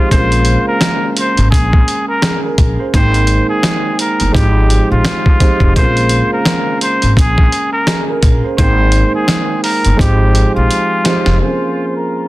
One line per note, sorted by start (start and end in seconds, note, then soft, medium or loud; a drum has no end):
0.00 0.13 F3 medium
0.00 0.13 G#3 medium
0.00 0.14 C4 medium
0.00 0.14 D#4 medium
0.00 0.13 G4 loud
0.11 0.55 A#1 loud
0.11 1.08 C#3 medium
0.11 1.09 G#3 medium
0.11 1.09 A#3 medium
0.11 1.10 C4 medium
0.11 1.10 F4 medium
0.11 0.64 C5 loud
0.11 kick loud
0.11 closed hi-hat loud
0.32 closed hi-hat medium
0.45 closed hi-hat medium
0.68 1.14 A#4 medium
0.81 snare loud
0.81 closed hi-hat medium
1.17 1.50 C5 medium
1.17 closed hi-hat medium
1.37 1.50 G#1 medium
1.37 closed hi-hat medium
1.51 1.80 A#1 loud
1.51 2.04 G#4 medium
1.51 kick loud
1.51 closed hi-hat loud
1.73 kick medium
1.88 closed hi-hat medium
2.08 2.40 A#4 medium
2.22 2.43 G#4 medium
2.22 snare loud
2.22 snare medium
2.22 closed hi-hat medium
2.44 2.77 A#4 medium
2.58 2.74 A#1 loud
2.58 kick loud
2.58 closed hi-hat medium
2.79 3.13 C5 medium
2.94 3.37 G#1 loud
2.94 3.91 D#3 medium
2.94 3.91 G#3 medium
2.94 3.92 A#3 medium
2.94 3.92 C4 medium
2.94 3.47 C5 loud
2.94 3.92 G5 medium
2.94 kick loud
2.94 closed hi-hat loud
3.14 closed hi-hat medium
3.27 closed hi-hat medium
3.49 3.97 G#4 medium
3.63 snare loud
3.63 closed hi-hat medium
3.99 4.32 A#4 medium
3.99 closed hi-hat medium
4.20 4.32 G1 medium
4.20 closed hi-hat medium
4.32 4.78 G#1 loud
4.32 5.20 F3 medium
4.32 5.21 G#3 medium
4.32 5.21 C4 medium
4.32 5.21 D#4 medium
4.32 4.87 G4 medium
4.32 5.22 G4 loud
4.32 kick loud
4.36 closed hi-hat loud
4.70 closed hi-hat medium
4.91 5.03 A#1 medium
4.91 5.72 F4 medium
5.05 snare loud
5.05 snare medium
5.05 closed hi-hat medium
5.26 kick loud
5.39 5.66 F3 medium
5.39 5.66 G#3 medium
5.39 5.66 C4 medium
5.39 5.67 D#4 medium
5.39 5.67 G4 loud
5.39 kick loud
5.39 snare soft
5.39 closed hi-hat medium
5.60 5.72 F1 medium
5.60 kick medium
5.76 6.19 A#1 loud
5.76 6.73 C#3 medium
5.76 6.74 G#3 medium
5.76 6.74 A#3 medium
5.76 6.74 C4 medium
5.76 6.75 F4 loud
5.76 6.29 C5 loud
5.76 kick loud
5.76 closed hi-hat loud
5.97 closed hi-hat medium
6.09 closed hi-hat medium
6.33 6.79 A#4 medium
6.45 snare loud
6.45 closed hi-hat medium
6.81 7.14 C5 medium
6.81 closed hi-hat medium
7.02 7.14 G#1 medium
7.02 closed hi-hat medium
7.17 7.44 A#1 loud
7.17 7.71 G#4 medium
7.17 kick loud
7.17 closed hi-hat loud
7.38 kick medium
7.52 closed hi-hat medium
7.73 8.05 A#4 medium
7.87 8.07 G#4 medium
7.87 snare loud
7.87 closed hi-hat medium
8.09 8.42 A#4 medium
8.23 8.39 A#1 loud
8.23 kick loud
8.23 closed hi-hat medium
8.44 8.77 C5 medium
8.58 9.02 G#1 loud
8.58 9.56 D#3 medium
8.58 9.56 G#3 medium
8.58 9.56 A#3 medium
8.58 9.57 C4 medium
8.58 9.11 C5 loud
8.58 9.57 G5 medium
8.58 kick loud
8.58 closed hi-hat loud
8.92 closed hi-hat medium
9.15 9.62 G#4 medium
9.28 snare loud
9.28 closed hi-hat medium
9.63 9.95 A#4 medium
9.63 open hi-hat medium
9.85 9.97 G1 medium
9.85 closed hi-hat medium
9.96 10.43 G#1 loud
9.96 10.85 F3 medium
9.96 10.85 G#3 medium
9.96 10.86 C4 medium
9.96 10.86 D#4 medium
9.96 10.86 G4 loud
9.96 10.52 G4 medium
9.96 kick loud
10.01 closed hi-hat loud
10.35 closed hi-hat medium
10.55 10.67 A#1 medium
10.55 11.37 F4 medium
10.71 closed hi-hat medium
11.04 11.30 F3 medium
11.04 11.31 G#3 medium
11.04 11.31 C4 medium
11.04 11.31 D#4 medium
11.04 11.32 G4 loud
11.04 snare loud
11.04 closed hi-hat medium
11.26 11.38 F1 medium
11.26 snare medium
11.41 12.28 F3 medium
11.41 12.28 A#3 medium
11.41 12.28 C4 medium
11.41 12.28 C#4 medium
11.41 12.28 G#4 medium
11.41 11.93 C5 loud
11.97 12.28 A#4 medium